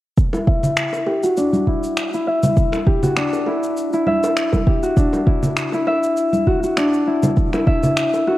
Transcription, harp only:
0.33 1.67 E4 medium
0.47 2.19 E5 medium
1.07 1.30 G4 medium
1.24 2.93 F#4 medium
1.37 3.16 D4 medium
1.67 2.13 E4 medium
2.14 3.47 E4 medium
2.27 3.99 E5 medium
2.87 3.09 G4 medium
3.03 4.73 F#4 medium
3.17 4.97 D4 medium
3.47 3.93 E4 medium
3.93 5.26 E4 medium
4.07 5.79 E5 medium
4.67 4.89 G4 medium
4.83 6.47 F#4 medium
4.97 6.77 D4 medium
5.26 5.73 E4 medium
5.74 7.07 E4 medium
5.87 7.59 E5 medium
6.47 6.63 F#4 medium
6.63 8.27 F#4 medium
6.77 8.38 D4 medium
7.07 7.53 E4 medium
7.54 8.38 E4 medium
7.67 8.38 E5 medium
8.27 8.38 F#4 medium

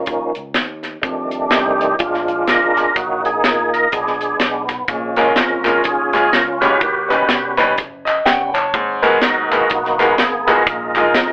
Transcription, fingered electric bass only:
0.07 0.31 D#2 medium
0.36 0.53 C#2 medium
0.56 0.96 D#2 medium
1.03 1.53 F2 loud
1.52 1.93 C2 medium
2.00 2.41 A#1 medium
2.48 2.89 G#1 medium
2.96 3.37 A#1 medium
3.44 3.85 A#2 medium
3.93 4.33 A#1 loud
4.40 4.81 B1 medium
4.88 5.29 A#1 loud
5.36 5.77 F2 medium
5.85 6.09 D#2 medium
6.12 6.29 C#2 medium
6.32 6.73 C#2 medium
6.81 7.22 D#2 loud
7.29 7.78 B1 medium
7.78 8.19 F#1 medium
8.25 8.74 F#1 medium
8.74 9.15 G#1 loud
9.22 9.63 D#2 medium
9.71 10.11 B1 loud
10.18 10.59 G#1 medium
10.67 11.16 A#1 loud
11.14 11.32 F2 medium

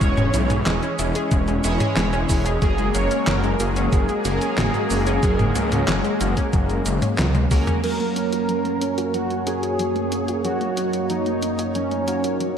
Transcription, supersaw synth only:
0.00 0.95 C#5 loud
2.62 2.96 G#4 loud
2.95 3.28 C#5 loud
3.27 3.61 A#4 loud
3.60 7.15 G#4 loud
7.84 8.14 A#4 loud
8.16 9.17 A#4 loud
9.14 9.48 F#4 loud
9.46 10.47 G#4 loud
10.44 11.12 F#4 loud
11.10 11.77 D#4 medium
11.75 12.58 C#4 medium

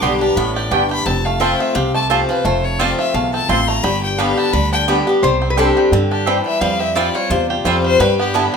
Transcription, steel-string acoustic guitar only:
0.00 0.34 G2 medium
0.00 0.20 D3 medium
0.00 0.21 G3 medium
0.00 0.21 B3 medium
0.00 0.20 G4 medium
0.21 0.37 B3 soft
0.21 0.36 G4 medium
0.37 0.70 A2 loud
0.71 1.04 G2 medium
1.06 1.72 F2 medium
1.40 1.73 F3 medium
1.40 1.74 A3 medium
1.40 1.74 C4 medium
1.40 1.74 F4 medium
1.75 2.41 C3 loud
2.10 2.28 F3 medium
2.10 2.28 A3 medium
2.10 2.29 C4 medium
2.10 2.28 F4 medium
2.29 2.45 C4 medium
2.29 2.44 F4 medium
2.45 3.11 F2 medium
2.79 3.13 F3 medium
2.79 3.13 A3 medium
2.79 3.13 C4 medium
2.79 3.13 F4 loud
3.14 3.47 E2 loud
3.49 3.82 F2 medium
3.83 4.50 G2 loud
4.18 4.52 D3 medium
4.18 4.52 G3 medium
4.18 4.52 B3 medium
4.18 4.52 G4 medium
4.53 4.87 D3 medium
4.88 5.06 D3 medium
4.88 5.06 G3 medium
4.88 5.07 B3 medium
4.88 5.06 G4 medium
5.07 5.23 B3 medium
5.07 5.22 G4 medium
5.24 5.89 C3 medium
5.58 5.90 G3 medium
5.58 5.91 C4 medium
5.58 5.91 D4 medium
5.58 5.91 G4 medium
5.93 6.26 D3 loud
6.27 6.60 E3 medium
6.61 6.94 F3 loud
6.95 7.14 F3 medium
6.95 7.14 G3 medium
6.95 7.15 C4 medium
6.95 7.13 F4 loud
7.14 7.30 C4 soft
7.14 7.30 F4 medium
7.30 7.97 C3 loud
7.65 7.98 F3 medium
7.65 7.99 G3 medium
7.65 7.99 C4 medium
7.65 7.99 F4 medium
8.00 8.57 G2 medium
8.34 8.57 D3 medium
8.34 8.57 G3 medium
8.34 8.57 B3 medium
8.34 8.57 G4 medium

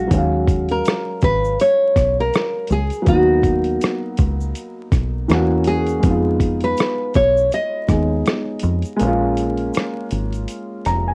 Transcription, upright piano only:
0.00 0.07 F#3 medium
0.00 0.10 G#3 medium
0.00 0.12 D4 medium
0.00 0.12 F5 medium
0.07 3.01 F#3 medium
0.07 3.03 G#3 medium
0.13 3.04 C#4 medium
0.13 3.06 F5 medium
3.02 5.23 F#3 medium
3.02 5.25 A#3 medium
3.08 5.26 B3 medium
3.08 5.28 D#4 medium
5.28 6.03 E3 medium
5.28 6.03 A#3 medium
5.28 6.04 C#4 medium
5.33 6.05 F#4 medium
5.99 7.83 G#3 medium
5.99 7.84 B3 medium
6.06 7.86 D#4 medium
6.06 7.88 F4 medium
7.88 8.95 G#3 medium
7.88 9.00 B3 soft
7.88 9.01 D#4 soft
7.92 9.02 G#4 medium
8.97 11.14 G#3 medium
8.97 11.14 A#3 medium
9.03 11.14 C#4 medium
9.03 11.14 F4 medium
10.86 11.05 A#5 medium
11.08 11.14 G#5 medium

